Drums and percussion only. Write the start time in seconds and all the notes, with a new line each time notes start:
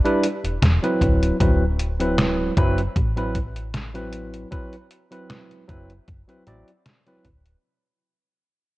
0.05 closed hi-hat
0.23 closed hi-hat
0.45 closed hi-hat
0.62 snare, closed hi-hat
0.84 closed hi-hat
1.01 kick, closed hi-hat
1.23 closed hi-hat
1.40 kick, closed hi-hat
1.79 closed hi-hat
2.00 closed hi-hat
2.18 snare, closed hi-hat
2.57 kick, closed hi-hat
2.78 closed hi-hat
2.96 kick, closed hi-hat
3.17 closed hi-hat
3.35 kick, closed hi-hat
3.56 closed hi-hat
3.74 snare, closed hi-hat
3.95 closed hi-hat
4.13 closed hi-hat
4.34 closed hi-hat
4.52 kick, closed hi-hat
4.73 closed hi-hat
4.91 closed hi-hat
5.12 closed hi-hat
5.30 snare, closed hi-hat
5.51 closed hi-hat
5.69 kick, closed hi-hat
5.90 closed hi-hat
6.08 kick, closed hi-hat
6.29 closed hi-hat
6.47 closed hi-hat
6.68 closed hi-hat
6.86 snare, closed hi-hat
7.07 closed hi-hat
7.25 kick, closed hi-hat
7.46 closed hi-hat